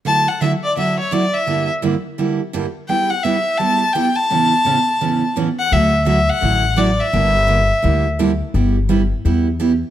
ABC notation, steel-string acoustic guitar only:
X:1
M:4/4
L:1/16
Q:"Swing" 1/4=170
K:D
V:1 name="Steel-string acoustic guitar"
[D,F,A,EF]2 z2 [D,F,A,EF] z3 [D,F,A,EF]2 z2 [D,F,A,EF] z3 | [G,,D,G,_B,EG]2 z2 [G,,D,G,B,EG] z3 [G,,D,G,B,EG]2 z2 [G,,D,G,B,EG] z3 | [G,B,EG]2 z2 [G,B,EG] z3 [G,B,EG]2 z2 [G,B,EG] z3 | [A,,C,E,B,C]2 z2 [A,,C,E,B,C] z3 [A,,C,E,B,C]2 z2 [A,,C,E,B,C] z3 |
[D,F,A,EF]2 z2 [D,F,A,EF] z3 [D,F,A,EF]2 z2 [D,F,A,EF] z3 | [D,G,_B,EG]2 z2 [D,G,B,EG] z3 [D,G,B,EG]2 z2 [D,G,B,EG] z3 | [G,B,EG]2 z2 [G,B,EG] z3 [G,B,EG]2 z2 [G,B,EG] z3 |]